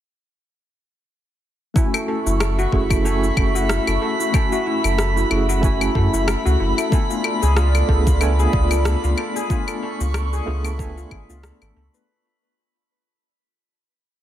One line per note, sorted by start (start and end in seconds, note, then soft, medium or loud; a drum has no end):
1.74 2.68 A3 medium
1.74 2.69 C#4 medium
1.74 2.69 E4 medium
1.74 1.92 E4 medium
1.74 6.88 F#4 medium
1.74 2.70 F#4 medium
1.74 6.88 E5 medium
1.74 2.70 G#5 medium
1.74 12.10 B5 medium
1.74 4.31 C#6 medium
1.74 kick loud
1.74 cabasa soft
1.94 2.07 A4 medium
1.94 cabasa soft
1.94 claves medium
2.08 2.24 A4 medium
2.26 2.66 F#1 loud
2.26 2.40 E4 medium
2.26 cabasa medium
2.40 2.50 A4 medium
2.40 cross-stick loud
2.40 cabasa medium
2.40 claves medium
2.59 2.72 F#4 medium
2.59 cabasa soft
2.72 3.30 F#1 loud
2.72 3.01 A3 medium
2.72 3.01 C#4 medium
2.72 3.01 E4 medium
2.72 2.89 E4 medium
2.72 3.02 F#4 medium
2.72 3.02 G#4 medium
2.72 kick medium
2.90 3.04 A4 medium
2.90 kick medium
2.90 cabasa medium
2.90 claves medium
3.03 4.29 A3 medium
3.03 4.30 C#4 medium
3.03 4.30 E4 medium
3.03 4.31 F#4 medium
3.03 3.21 A4 medium
3.03 4.31 G#5 medium
3.03 cabasa soft
3.23 3.37 E4 medium
3.23 cabasa soft
3.37 3.79 F#1 medium
3.37 3.47 A4 medium
3.37 kick medium
3.37 claves medium
3.55 3.69 F#4 medium
3.55 cabasa medium
3.69 3.86 E4 medium
3.69 cross-stick loud
3.69 cabasa medium
3.87 3.98 F#1 medium
3.87 4.01 A4 medium
3.87 cabasa soft
3.87 claves medium
4.02 4.18 A4 medium
4.20 4.33 E4 medium
4.20 cabasa medium
4.32 5.26 A3 medium
4.32 5.27 C#4 medium
4.32 5.27 E4 medium
4.32 5.28 F#4 medium
4.32 4.44 A4 medium
4.32 5.28 G#5 medium
4.32 9.46 B5 medium
4.32 kick loud
4.32 cabasa medium
4.32 claves medium
4.52 4.66 F#4 medium
4.52 cabasa soft
4.67 4.83 E4 medium
4.84 5.24 F#1 loud
4.84 4.97 A4 medium
4.84 cabasa medium
4.84 claves medium
4.98 5.15 A4 medium
4.98 cross-stick loud
4.98 cabasa medium
5.17 5.30 E4 medium
5.17 cabasa soft
5.30 5.89 F#1 loud
5.30 5.59 A3 medium
5.30 5.59 C#4 medium
5.30 5.60 E4 medium
5.30 5.60 F#4 medium
5.30 5.60 G#4 medium
5.30 5.40 A4 medium
5.30 claves medium
5.49 5.62 F#4 medium
5.49 cabasa medium
5.61 6.88 A3 medium
5.61 6.88 C#4 medium
5.61 6.89 E4 medium
5.61 5.79 E4 medium
5.61 6.89 F#4 medium
5.61 6.90 G#5 medium
5.61 kick loud
5.61 cabasa medium
5.81 5.94 A4 medium
5.81 cabasa soft
5.81 claves medium
5.95 6.08 F#2 medium
5.95 6.12 A4 medium
5.95 kick medium
6.13 6.35 F#1 medium
6.13 6.27 E4 medium
6.13 cabasa medium
6.28 6.37 A4 medium
6.28 cross-stick loud
6.28 cabasa medium
6.28 claves medium
6.46 6.56 C#2 loud
6.46 6.59 F#4 loud
6.46 cabasa soft
6.60 6.73 F#1 medium
6.60 6.76 E4 medium
6.78 6.91 A4 medium
6.78 cabasa medium
6.78 claves medium
6.90 7.84 A3 medium
6.90 7.85 B3 medium
6.90 7.85 D4 medium
6.90 12.04 F4 medium
6.90 7.86 F4 medium
6.90 7.08 A4 medium
6.90 12.04 D5 medium
6.90 7.86 G#5 medium
6.90 kick loud
6.90 cabasa medium
7.10 7.24 F4 medium
7.10 cabasa soft
7.24 7.34 A4 medium
7.24 claves medium
7.43 7.82 C#2 loud
7.43 7.56 G#4 medium
7.43 cabasa medium
7.57 7.73 F4 medium
7.57 cross-stick medium
7.57 cabasa medium
7.75 7.88 A4 medium
7.75 cabasa soft
7.75 claves medium
7.88 8.47 C#2 loud
7.88 8.17 A3 medium
7.88 8.18 B3 medium
7.88 8.18 D4 medium
7.88 8.18 F4 medium
7.88 8.18 G#4 medium
7.88 8.05 A4 medium
7.88 kick medium
8.07 8.21 F4 medium
8.07 kick loud
8.07 cabasa medium
8.19 9.46 A3 medium
8.19 9.46 B3 medium
8.19 9.47 D4 medium
8.19 9.47 F4 medium
8.19 8.31 A4 medium
8.19 9.48 G#5 medium
8.19 cabasa medium
8.19 claves medium
8.39 8.53 G#4 medium
8.39 cabasa soft
8.53 8.95 C#2 medium
8.53 8.70 F4 medium
8.53 kick loud
8.71 8.85 A4 medium
8.71 cabasa medium
8.71 claves medium
8.85 9.02 A4 medium
8.85 cross-stick loud
8.85 cabasa medium
9.04 9.14 C#2 medium
9.04 9.17 F4 medium
9.04 cabasa soft
9.18 9.28 A4 medium
9.18 claves medium
9.36 9.49 G#4 loud
9.36 cabasa medium
9.48 10.42 A3 medium
9.48 10.43 B3 medium
9.48 10.43 D4 medium
9.48 9.66 F4 medium
9.48 10.44 F4 medium
9.48 12.06 C#6 medium
9.48 kick loud
9.48 cabasa medium
9.52 10.44 G#5 medium
9.68 9.81 A4 medium
9.68 cabasa soft
9.68 claves medium
9.83 9.99 A4 medium
10.00 10.40 C#2 loud
10.00 10.14 F4 medium
10.00 cabasa medium
10.14 10.25 A4 medium
10.14 cross-stick medium
10.14 cabasa medium
10.14 claves medium
10.33 10.46 G#4 loud
10.33 cabasa soft
10.46 11.05 C#2 loud
10.46 10.75 A3 medium
10.46 10.75 B3 medium
10.46 10.76 D4 medium
10.46 10.76 F4 medium
10.46 10.63 F4 medium
10.46 10.76 G#4 loud
10.65 10.78 A4 medium
10.65 cabasa medium
10.65 claves medium
10.77 12.04 A3 medium
10.77 12.04 B3 medium
10.77 12.05 D4 medium
10.77 12.05 F4 medium
10.77 10.95 A4 medium
10.77 12.06 G#5 medium
10.77 kick loud
10.77 cabasa medium
10.97 11.11 F4 medium
10.97 cabasa soft
11.11 11.24 G#1 medium
11.11 11.21 G#4 medium
11.11 kick medium
11.11 claves medium
11.29 11.51 C#2 medium
11.29 11.37 F4 medium
11.29 cabasa medium
11.43 11.54 A4 medium
11.43 cross-stick loud
11.43 cabasa medium
11.61 11.72 G#1 loud
11.61 11.75 A4 medium
11.61 cabasa soft
11.61 claves medium
11.76 11.89 C#2 medium
11.76 11.86 A4 medium
11.94 12.07 B4 medium
11.94 cabasa medium